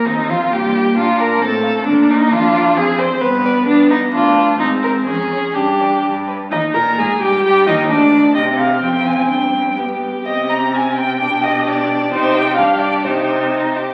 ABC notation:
X:1
M:2/4
L:1/8
Q:1/4=129
K:Bbmix
V:1 name="Violin"
E F G2 | z d z f | z d z d | [K:Gphr] z d z d |
z =B z B | z c z _d | z d z =B | e b a g |
g e d2 | e f g a | g2 z2 | e b a g |
g e d2 | c g f d | c3 z |]
V:2 name="Violin"
E F G2 | F B =A2 | D E F2 | [K:Gphr] A c =B2 |
D E F2 | E B A2 | G3 z | E B A G |
G E D2 | G2 F2 | D2 G2- | G4 |
G4 | G2 G2 | G2 E G |]
V:3 name="Viola"
C2 B,2 | D2 C2 | B,2 D2 | [K:Gphr] C2 =B,2 |
=B,2 D2 | C2 _D2 | D3 z | E B A G |
G E D2 | C4- | C2 =B, z | C4 |
D4 | E2 D2 | E3 z |]
V:4 name="Cello" clef=bass
E,, F,, G,,2 | B,,2 =A,,2 | B,,2 F,,2 | [K:Gphr] F,,2 G,,2 |
G,,2 D,,2 | A,,2 F,,2 | G,,2 G,,2 | E,, B,, A,, G,, |
G,, E,, D,,2 | C,2 F,,2 | G,,3 z | C,4 |
=B,,4 | C,2 G,,2 | C,3 z |]